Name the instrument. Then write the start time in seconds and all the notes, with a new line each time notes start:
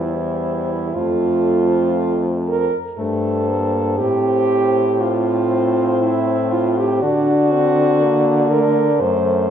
french horn
Already playing: E2 G3 E4 C5
0.94 F2 A3 F4 C5
2.48 A#4
2.97 G2 A3 A4 C5
3.48 A#3
3.99 A2 C4 G4 C5
5.01 C4 F4 C5
6.03 E4
6.52 F4
6.78 G4
7.02 D3 D4 F#4 D5
7.52 C4
8.01 A#3
8.51 A3 A#4
9.00 F#2 A3 C5